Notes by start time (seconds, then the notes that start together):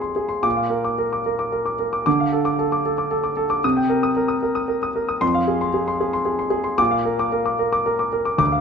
Already playing: F2 G#4 F5
0.00 C6
0.16 G#4
0.29 C6
0.43 A#2 D6
0.57 F5
0.70 A#4
0.84 D6
0.98 A#4
1.13 D6
1.26 A#4
1.39 D6
1.52 A#4
1.66 D6
1.79 A#4
1.93 D6
2.06 D3 D6
2.20 F5
2.32 A4
2.45 D6
2.59 A4
2.72 D6
2.86 A4
2.98 D6
3.11 A4
3.24 D6
3.37 A4
3.50 D6
3.64 C3 D#6
3.77 G5
3.90 A#4
4.03 D#6
4.17 A#4
4.28 D#6
4.43 A#4
4.55 D#6
4.68 A#4
4.83 D#6
4.96 A#4
5.09 D#6
5.21 F2 C6
5.34 F5
5.48 G#4
5.61 C6
5.74 G#4
5.88 C6
6.01 G#4
6.13 C6
6.25 G#4
6.39 C6
6.50 G#4
6.64 C6
6.78 A#2 D6
6.91 F5
7.05 A#4
7.19 D6
7.32 A#4
7.46 D6
7.59 A#4
7.72 D6
7.86 A#4
7.99 D6
8.13 A#4
8.25 D6
8.38 D2 D6
8.52 F5